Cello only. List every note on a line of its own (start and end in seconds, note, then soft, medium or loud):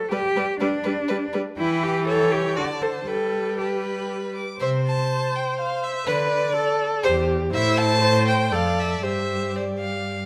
0.00 0.11 A4 medium
0.12 0.60 G4 loud
0.60 1.32 D4 medium
1.58 1.85 E4 medium
1.83 2.07 G4 medium
2.07 2.33 A4 loud
2.32 2.56 G4 medium
2.56 2.64 F#4 medium
2.81 2.89 A4 medium
3.08 3.60 A4 medium
3.58 4.09 G4 medium
4.60 5.01 C3 medium
6.07 6.48 D3 medium
7.05 7.45 E2 medium
7.53 8.54 A2 medium
8.52 9.03 F2 medium
9.04 10.26 G2 medium